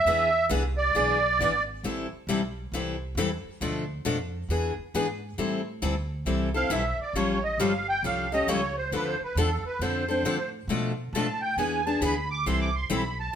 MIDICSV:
0, 0, Header, 1, 5, 480
1, 0, Start_track
1, 0, Key_signature, 0, "minor"
1, 0, Tempo, 442804
1, 61, Time_signature, 4, 2, 24, 8
1, 14472, End_track
2, 0, Start_track
2, 0, Title_t, "Accordion"
2, 0, Program_c, 0, 21
2, 0, Note_on_c, 0, 76, 111
2, 499, Note_off_c, 0, 76, 0
2, 842, Note_on_c, 0, 74, 113
2, 1766, Note_off_c, 0, 74, 0
2, 7106, Note_on_c, 0, 77, 94
2, 7267, Note_off_c, 0, 77, 0
2, 7285, Note_on_c, 0, 76, 75
2, 7576, Note_off_c, 0, 76, 0
2, 7604, Note_on_c, 0, 74, 75
2, 7756, Note_off_c, 0, 74, 0
2, 7756, Note_on_c, 0, 73, 80
2, 8051, Note_off_c, 0, 73, 0
2, 8063, Note_on_c, 0, 75, 75
2, 8226, Note_off_c, 0, 75, 0
2, 8235, Note_on_c, 0, 77, 81
2, 8530, Note_off_c, 0, 77, 0
2, 8552, Note_on_c, 0, 79, 110
2, 8710, Note_off_c, 0, 79, 0
2, 8727, Note_on_c, 0, 77, 76
2, 9017, Note_off_c, 0, 77, 0
2, 9029, Note_on_c, 0, 75, 97
2, 9189, Note_off_c, 0, 75, 0
2, 9197, Note_on_c, 0, 73, 85
2, 9492, Note_off_c, 0, 73, 0
2, 9510, Note_on_c, 0, 72, 78
2, 9669, Note_off_c, 0, 72, 0
2, 9680, Note_on_c, 0, 71, 68
2, 9829, Note_off_c, 0, 71, 0
2, 9829, Note_on_c, 0, 72, 80
2, 9983, Note_off_c, 0, 72, 0
2, 10015, Note_on_c, 0, 71, 70
2, 10157, Note_off_c, 0, 71, 0
2, 10160, Note_on_c, 0, 69, 69
2, 10453, Note_off_c, 0, 69, 0
2, 10475, Note_on_c, 0, 71, 80
2, 10632, Note_off_c, 0, 71, 0
2, 10640, Note_on_c, 0, 72, 70
2, 11379, Note_off_c, 0, 72, 0
2, 12076, Note_on_c, 0, 81, 79
2, 12371, Note_off_c, 0, 81, 0
2, 12376, Note_on_c, 0, 79, 89
2, 12542, Note_off_c, 0, 79, 0
2, 12545, Note_on_c, 0, 80, 80
2, 12845, Note_off_c, 0, 80, 0
2, 12858, Note_on_c, 0, 81, 98
2, 13023, Note_off_c, 0, 81, 0
2, 13026, Note_on_c, 0, 83, 78
2, 13326, Note_off_c, 0, 83, 0
2, 13342, Note_on_c, 0, 86, 105
2, 13505, Note_off_c, 0, 86, 0
2, 13509, Note_on_c, 0, 84, 78
2, 13663, Note_off_c, 0, 84, 0
2, 13668, Note_on_c, 0, 86, 97
2, 13822, Note_off_c, 0, 86, 0
2, 13828, Note_on_c, 0, 84, 78
2, 13982, Note_off_c, 0, 84, 0
2, 13991, Note_on_c, 0, 83, 73
2, 14288, Note_off_c, 0, 83, 0
2, 14308, Note_on_c, 0, 81, 84
2, 14468, Note_off_c, 0, 81, 0
2, 14472, End_track
3, 0, Start_track
3, 0, Title_t, "Steel-string acoustic guitar"
3, 0, Program_c, 1, 25
3, 71, Note_on_c, 1, 52, 70
3, 78, Note_on_c, 1, 59, 73
3, 79, Note_on_c, 1, 62, 68
3, 83, Note_on_c, 1, 68, 86
3, 303, Note_off_c, 1, 52, 0
3, 306, Note_off_c, 1, 59, 0
3, 307, Note_off_c, 1, 62, 0
3, 309, Note_off_c, 1, 68, 0
3, 536, Note_on_c, 1, 52, 87
3, 548, Note_on_c, 1, 59, 96
3, 551, Note_on_c, 1, 62, 97
3, 552, Note_on_c, 1, 68, 104
3, 665, Note_off_c, 1, 52, 0
3, 670, Note_off_c, 1, 59, 0
3, 672, Note_off_c, 1, 62, 0
3, 673, Note_off_c, 1, 68, 0
3, 1027, Note_on_c, 1, 52, 70
3, 1031, Note_on_c, 1, 59, 70
3, 1038, Note_on_c, 1, 62, 76
3, 1040, Note_on_c, 1, 68, 74
3, 1262, Note_off_c, 1, 52, 0
3, 1264, Note_off_c, 1, 59, 0
3, 1268, Note_off_c, 1, 62, 0
3, 1269, Note_off_c, 1, 68, 0
3, 1524, Note_on_c, 1, 52, 72
3, 1534, Note_on_c, 1, 62, 92
3, 1537, Note_on_c, 1, 59, 84
3, 1543, Note_on_c, 1, 68, 82
3, 1640, Note_off_c, 1, 52, 0
3, 1645, Note_off_c, 1, 62, 0
3, 1646, Note_off_c, 1, 59, 0
3, 1649, Note_off_c, 1, 68, 0
3, 1998, Note_on_c, 1, 55, 75
3, 2000, Note_on_c, 1, 52, 69
3, 2003, Note_on_c, 1, 60, 64
3, 2008, Note_on_c, 1, 64, 81
3, 2009, Note_on_c, 1, 69, 77
3, 2228, Note_off_c, 1, 55, 0
3, 2229, Note_off_c, 1, 52, 0
3, 2231, Note_off_c, 1, 60, 0
3, 2234, Note_off_c, 1, 64, 0
3, 2234, Note_off_c, 1, 69, 0
3, 2478, Note_on_c, 1, 52, 76
3, 2478, Note_on_c, 1, 55, 80
3, 2486, Note_on_c, 1, 60, 84
3, 2489, Note_on_c, 1, 64, 94
3, 2495, Note_on_c, 1, 69, 90
3, 2597, Note_off_c, 1, 55, 0
3, 2598, Note_off_c, 1, 52, 0
3, 2601, Note_off_c, 1, 60, 0
3, 2603, Note_off_c, 1, 64, 0
3, 2606, Note_off_c, 1, 69, 0
3, 2965, Note_on_c, 1, 52, 73
3, 2971, Note_on_c, 1, 55, 69
3, 2976, Note_on_c, 1, 69, 65
3, 2977, Note_on_c, 1, 60, 70
3, 2980, Note_on_c, 1, 64, 75
3, 3192, Note_off_c, 1, 52, 0
3, 3195, Note_off_c, 1, 55, 0
3, 3198, Note_off_c, 1, 60, 0
3, 3198, Note_off_c, 1, 69, 0
3, 3200, Note_off_c, 1, 64, 0
3, 3440, Note_on_c, 1, 52, 80
3, 3444, Note_on_c, 1, 60, 83
3, 3447, Note_on_c, 1, 55, 81
3, 3452, Note_on_c, 1, 64, 96
3, 3452, Note_on_c, 1, 69, 99
3, 3559, Note_off_c, 1, 52, 0
3, 3561, Note_off_c, 1, 60, 0
3, 3562, Note_off_c, 1, 55, 0
3, 3565, Note_off_c, 1, 64, 0
3, 3565, Note_off_c, 1, 69, 0
3, 3914, Note_on_c, 1, 47, 70
3, 3920, Note_on_c, 1, 57, 65
3, 3922, Note_on_c, 1, 53, 76
3, 3927, Note_on_c, 1, 62, 69
3, 3927, Note_on_c, 1, 69, 77
3, 4147, Note_off_c, 1, 47, 0
3, 4150, Note_off_c, 1, 57, 0
3, 4151, Note_off_c, 1, 53, 0
3, 4153, Note_off_c, 1, 62, 0
3, 4153, Note_off_c, 1, 69, 0
3, 4389, Note_on_c, 1, 47, 88
3, 4395, Note_on_c, 1, 53, 91
3, 4396, Note_on_c, 1, 57, 79
3, 4400, Note_on_c, 1, 62, 90
3, 4402, Note_on_c, 1, 69, 99
3, 4513, Note_off_c, 1, 47, 0
3, 4516, Note_off_c, 1, 53, 0
3, 4517, Note_off_c, 1, 57, 0
3, 4519, Note_off_c, 1, 62, 0
3, 4520, Note_off_c, 1, 69, 0
3, 4879, Note_on_c, 1, 52, 71
3, 4883, Note_on_c, 1, 59, 62
3, 4886, Note_on_c, 1, 62, 65
3, 4891, Note_on_c, 1, 68, 76
3, 5109, Note_off_c, 1, 52, 0
3, 5111, Note_off_c, 1, 59, 0
3, 5113, Note_off_c, 1, 62, 0
3, 5116, Note_off_c, 1, 68, 0
3, 5361, Note_on_c, 1, 52, 82
3, 5366, Note_on_c, 1, 59, 90
3, 5370, Note_on_c, 1, 62, 99
3, 5372, Note_on_c, 1, 68, 88
3, 5480, Note_off_c, 1, 52, 0
3, 5482, Note_off_c, 1, 59, 0
3, 5484, Note_off_c, 1, 62, 0
3, 5485, Note_off_c, 1, 68, 0
3, 5833, Note_on_c, 1, 55, 70
3, 5836, Note_on_c, 1, 52, 62
3, 5843, Note_on_c, 1, 60, 74
3, 5844, Note_on_c, 1, 64, 69
3, 5847, Note_on_c, 1, 69, 69
3, 6066, Note_off_c, 1, 55, 0
3, 6068, Note_off_c, 1, 52, 0
3, 6071, Note_off_c, 1, 60, 0
3, 6072, Note_off_c, 1, 64, 0
3, 6073, Note_off_c, 1, 69, 0
3, 6308, Note_on_c, 1, 52, 71
3, 6312, Note_on_c, 1, 55, 91
3, 6314, Note_on_c, 1, 60, 90
3, 6315, Note_on_c, 1, 64, 83
3, 6322, Note_on_c, 1, 69, 85
3, 6433, Note_off_c, 1, 52, 0
3, 6435, Note_off_c, 1, 55, 0
3, 6436, Note_off_c, 1, 60, 0
3, 6436, Note_off_c, 1, 64, 0
3, 6440, Note_off_c, 1, 69, 0
3, 6786, Note_on_c, 1, 52, 65
3, 6791, Note_on_c, 1, 60, 65
3, 6794, Note_on_c, 1, 55, 65
3, 6795, Note_on_c, 1, 64, 64
3, 6800, Note_on_c, 1, 69, 70
3, 7023, Note_off_c, 1, 52, 0
3, 7025, Note_off_c, 1, 60, 0
3, 7027, Note_off_c, 1, 55, 0
3, 7027, Note_off_c, 1, 64, 0
3, 7030, Note_off_c, 1, 69, 0
3, 7093, Note_on_c, 1, 69, 58
3, 7107, Note_on_c, 1, 64, 49
3, 7121, Note_on_c, 1, 60, 47
3, 7259, Note_off_c, 1, 64, 0
3, 7259, Note_off_c, 1, 69, 0
3, 7260, Note_off_c, 1, 60, 0
3, 7263, Note_on_c, 1, 55, 83
3, 7265, Note_on_c, 1, 52, 78
3, 7272, Note_on_c, 1, 64, 92
3, 7273, Note_on_c, 1, 60, 84
3, 7275, Note_on_c, 1, 69, 90
3, 7390, Note_off_c, 1, 55, 0
3, 7391, Note_off_c, 1, 52, 0
3, 7395, Note_off_c, 1, 60, 0
3, 7395, Note_off_c, 1, 64, 0
3, 7396, Note_off_c, 1, 69, 0
3, 7756, Note_on_c, 1, 53, 65
3, 7759, Note_on_c, 1, 55, 69
3, 7763, Note_on_c, 1, 61, 74
3, 7764, Note_on_c, 1, 69, 67
3, 7765, Note_on_c, 1, 67, 76
3, 7988, Note_off_c, 1, 53, 0
3, 7989, Note_off_c, 1, 55, 0
3, 7991, Note_off_c, 1, 61, 0
3, 7992, Note_off_c, 1, 67, 0
3, 7992, Note_off_c, 1, 69, 0
3, 8234, Note_on_c, 1, 55, 91
3, 8237, Note_on_c, 1, 53, 83
3, 8242, Note_on_c, 1, 67, 87
3, 8244, Note_on_c, 1, 61, 102
3, 8244, Note_on_c, 1, 69, 99
3, 8355, Note_off_c, 1, 55, 0
3, 8357, Note_off_c, 1, 53, 0
3, 8360, Note_off_c, 1, 67, 0
3, 8361, Note_off_c, 1, 61, 0
3, 8361, Note_off_c, 1, 69, 0
3, 8718, Note_on_c, 1, 53, 56
3, 8718, Note_on_c, 1, 55, 69
3, 8726, Note_on_c, 1, 61, 64
3, 8726, Note_on_c, 1, 67, 76
3, 8734, Note_on_c, 1, 69, 70
3, 8948, Note_off_c, 1, 53, 0
3, 8949, Note_off_c, 1, 55, 0
3, 8953, Note_off_c, 1, 61, 0
3, 8953, Note_off_c, 1, 67, 0
3, 8957, Note_off_c, 1, 69, 0
3, 9020, Note_on_c, 1, 69, 58
3, 9036, Note_on_c, 1, 67, 52
3, 9046, Note_on_c, 1, 61, 53
3, 9182, Note_off_c, 1, 69, 0
3, 9188, Note_off_c, 1, 67, 0
3, 9189, Note_off_c, 1, 61, 0
3, 9192, Note_on_c, 1, 53, 83
3, 9197, Note_on_c, 1, 55, 80
3, 9201, Note_on_c, 1, 67, 92
3, 9202, Note_on_c, 1, 61, 98
3, 9207, Note_on_c, 1, 69, 93
3, 9315, Note_off_c, 1, 53, 0
3, 9317, Note_off_c, 1, 55, 0
3, 9319, Note_off_c, 1, 67, 0
3, 9320, Note_off_c, 1, 61, 0
3, 9322, Note_off_c, 1, 69, 0
3, 9673, Note_on_c, 1, 50, 61
3, 9674, Note_on_c, 1, 53, 70
3, 9677, Note_on_c, 1, 60, 66
3, 9681, Note_on_c, 1, 62, 75
3, 9685, Note_on_c, 1, 69, 77
3, 9906, Note_off_c, 1, 50, 0
3, 9907, Note_off_c, 1, 53, 0
3, 9908, Note_off_c, 1, 60, 0
3, 9910, Note_off_c, 1, 62, 0
3, 9912, Note_off_c, 1, 69, 0
3, 10161, Note_on_c, 1, 50, 93
3, 10162, Note_on_c, 1, 53, 86
3, 10163, Note_on_c, 1, 60, 87
3, 10164, Note_on_c, 1, 62, 94
3, 10171, Note_on_c, 1, 69, 97
3, 10279, Note_off_c, 1, 50, 0
3, 10279, Note_off_c, 1, 53, 0
3, 10280, Note_off_c, 1, 60, 0
3, 10281, Note_off_c, 1, 62, 0
3, 10284, Note_off_c, 1, 69, 0
3, 10639, Note_on_c, 1, 50, 58
3, 10639, Note_on_c, 1, 53, 72
3, 10641, Note_on_c, 1, 62, 71
3, 10643, Note_on_c, 1, 60, 69
3, 10648, Note_on_c, 1, 69, 71
3, 10869, Note_off_c, 1, 50, 0
3, 10869, Note_off_c, 1, 53, 0
3, 10870, Note_off_c, 1, 62, 0
3, 10871, Note_off_c, 1, 60, 0
3, 10874, Note_off_c, 1, 69, 0
3, 10932, Note_on_c, 1, 69, 54
3, 10944, Note_on_c, 1, 62, 52
3, 10955, Note_on_c, 1, 60, 49
3, 11098, Note_off_c, 1, 69, 0
3, 11105, Note_off_c, 1, 62, 0
3, 11106, Note_off_c, 1, 60, 0
3, 11112, Note_on_c, 1, 50, 74
3, 11117, Note_on_c, 1, 62, 84
3, 11118, Note_on_c, 1, 53, 85
3, 11119, Note_on_c, 1, 60, 87
3, 11124, Note_on_c, 1, 69, 104
3, 11234, Note_off_c, 1, 50, 0
3, 11237, Note_off_c, 1, 62, 0
3, 11238, Note_off_c, 1, 53, 0
3, 11238, Note_off_c, 1, 60, 0
3, 11240, Note_off_c, 1, 69, 0
3, 11590, Note_on_c, 1, 47, 71
3, 11597, Note_on_c, 1, 53, 67
3, 11600, Note_on_c, 1, 57, 80
3, 11601, Note_on_c, 1, 69, 67
3, 11606, Note_on_c, 1, 62, 76
3, 11824, Note_off_c, 1, 47, 0
3, 11828, Note_off_c, 1, 53, 0
3, 11829, Note_off_c, 1, 57, 0
3, 11830, Note_off_c, 1, 69, 0
3, 11832, Note_off_c, 1, 62, 0
3, 12085, Note_on_c, 1, 47, 83
3, 12087, Note_on_c, 1, 53, 78
3, 12092, Note_on_c, 1, 57, 84
3, 12097, Note_on_c, 1, 62, 83
3, 12100, Note_on_c, 1, 69, 94
3, 12201, Note_off_c, 1, 47, 0
3, 12202, Note_off_c, 1, 53, 0
3, 12204, Note_off_c, 1, 57, 0
3, 12207, Note_off_c, 1, 62, 0
3, 12208, Note_off_c, 1, 69, 0
3, 12551, Note_on_c, 1, 52, 58
3, 12558, Note_on_c, 1, 59, 66
3, 12559, Note_on_c, 1, 62, 66
3, 12566, Note_on_c, 1, 68, 75
3, 12785, Note_off_c, 1, 52, 0
3, 12788, Note_off_c, 1, 59, 0
3, 12789, Note_off_c, 1, 62, 0
3, 12792, Note_off_c, 1, 68, 0
3, 12864, Note_on_c, 1, 68, 55
3, 12868, Note_on_c, 1, 62, 59
3, 12883, Note_on_c, 1, 59, 44
3, 13015, Note_off_c, 1, 59, 0
3, 13018, Note_off_c, 1, 68, 0
3, 13021, Note_off_c, 1, 62, 0
3, 13026, Note_on_c, 1, 52, 81
3, 13029, Note_on_c, 1, 59, 82
3, 13031, Note_on_c, 1, 68, 102
3, 13034, Note_on_c, 1, 62, 79
3, 13151, Note_off_c, 1, 52, 0
3, 13153, Note_off_c, 1, 59, 0
3, 13154, Note_off_c, 1, 68, 0
3, 13155, Note_off_c, 1, 62, 0
3, 13510, Note_on_c, 1, 52, 67
3, 13516, Note_on_c, 1, 55, 64
3, 13517, Note_on_c, 1, 60, 69
3, 13520, Note_on_c, 1, 69, 73
3, 13523, Note_on_c, 1, 64, 78
3, 13744, Note_off_c, 1, 52, 0
3, 13747, Note_off_c, 1, 55, 0
3, 13748, Note_off_c, 1, 60, 0
3, 13749, Note_off_c, 1, 69, 0
3, 13751, Note_off_c, 1, 64, 0
3, 13979, Note_on_c, 1, 52, 88
3, 13982, Note_on_c, 1, 55, 93
3, 13988, Note_on_c, 1, 60, 101
3, 13989, Note_on_c, 1, 64, 96
3, 13996, Note_on_c, 1, 69, 87
3, 14108, Note_off_c, 1, 52, 0
3, 14109, Note_off_c, 1, 55, 0
3, 14112, Note_off_c, 1, 60, 0
3, 14113, Note_off_c, 1, 64, 0
3, 14116, Note_off_c, 1, 69, 0
3, 14472, End_track
4, 0, Start_track
4, 0, Title_t, "Upright bass"
4, 0, Program_c, 2, 32
4, 53, Note_on_c, 2, 40, 84
4, 524, Note_off_c, 2, 40, 0
4, 542, Note_on_c, 2, 36, 95
4, 1009, Note_off_c, 2, 36, 0
4, 1034, Note_on_c, 2, 35, 88
4, 1496, Note_off_c, 2, 35, 0
4, 1508, Note_on_c, 2, 32, 92
4, 1973, Note_off_c, 2, 32, 0
4, 1988, Note_on_c, 2, 33, 87
4, 2275, Note_off_c, 2, 33, 0
4, 2460, Note_on_c, 2, 35, 83
4, 2929, Note_off_c, 2, 35, 0
4, 2946, Note_on_c, 2, 36, 84
4, 3407, Note_off_c, 2, 36, 0
4, 3414, Note_on_c, 2, 40, 90
4, 3708, Note_off_c, 2, 40, 0
4, 3908, Note_on_c, 2, 38, 84
4, 4374, Note_off_c, 2, 38, 0
4, 4391, Note_on_c, 2, 41, 77
4, 4855, Note_off_c, 2, 41, 0
4, 4862, Note_on_c, 2, 40, 80
4, 5152, Note_off_c, 2, 40, 0
4, 5357, Note_on_c, 2, 44, 86
4, 5818, Note_off_c, 2, 44, 0
4, 5831, Note_on_c, 2, 45, 81
4, 6295, Note_off_c, 2, 45, 0
4, 6307, Note_on_c, 2, 38, 84
4, 6773, Note_off_c, 2, 38, 0
4, 6780, Note_on_c, 2, 36, 81
4, 7249, Note_off_c, 2, 36, 0
4, 7259, Note_on_c, 2, 35, 87
4, 7550, Note_off_c, 2, 35, 0
4, 7731, Note_on_c, 2, 33, 80
4, 8204, Note_off_c, 2, 33, 0
4, 8213, Note_on_c, 2, 31, 79
4, 8685, Note_off_c, 2, 31, 0
4, 8700, Note_on_c, 2, 36, 90
4, 9169, Note_off_c, 2, 36, 0
4, 9181, Note_on_c, 2, 37, 88
4, 9650, Note_off_c, 2, 37, 0
4, 9666, Note_on_c, 2, 38, 84
4, 9954, Note_off_c, 2, 38, 0
4, 10139, Note_on_c, 2, 40, 92
4, 10430, Note_off_c, 2, 40, 0
4, 10615, Note_on_c, 2, 41, 83
4, 11084, Note_off_c, 2, 41, 0
4, 11091, Note_on_c, 2, 45, 83
4, 11564, Note_off_c, 2, 45, 0
4, 11572, Note_on_c, 2, 47, 86
4, 12045, Note_off_c, 2, 47, 0
4, 12062, Note_on_c, 2, 45, 91
4, 12527, Note_off_c, 2, 45, 0
4, 12533, Note_on_c, 2, 40, 82
4, 13005, Note_off_c, 2, 40, 0
4, 13019, Note_on_c, 2, 38, 92
4, 13488, Note_off_c, 2, 38, 0
4, 13506, Note_on_c, 2, 36, 84
4, 13971, Note_off_c, 2, 36, 0
4, 13982, Note_on_c, 2, 35, 91
4, 14449, Note_off_c, 2, 35, 0
4, 14472, End_track
5, 0, Start_track
5, 0, Title_t, "Muted upright bass strokes"
5, 2300, Note_on_c, 9, 29, 36
5, 2408, Note_off_c, 9, 29, 0
5, 3731, Note_on_c, 9, 29, 43
5, 3840, Note_off_c, 9, 29, 0
5, 5179, Note_on_c, 9, 29, 41
5, 5288, Note_off_c, 9, 29, 0
5, 7570, Note_on_c, 9, 29, 40
5, 7679, Note_off_c, 9, 29, 0
5, 9975, Note_on_c, 9, 29, 40
5, 10083, Note_off_c, 9, 29, 0
5, 10445, Note_on_c, 9, 29, 39
5, 10554, Note_off_c, 9, 29, 0
5, 14472, End_track
0, 0, End_of_file